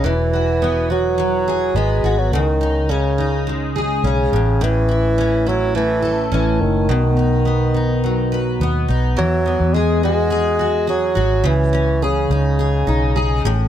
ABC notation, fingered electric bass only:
X:1
M:4/4
L:1/16
Q:1/4=105
K:E
V:1 name="Fingered electric bass" clef=bass
E,,,12 G,,,2 G,,,2 | C,,12 B,,,2 A,,,2- | A,,,12 A,,,2 F,,,2 | B,,,12 D,,2 B,,,2 |
E,,3 E,,8- E,,3 G,,,2 | C,,6 C,,4 B,,,4 A,,,2 |]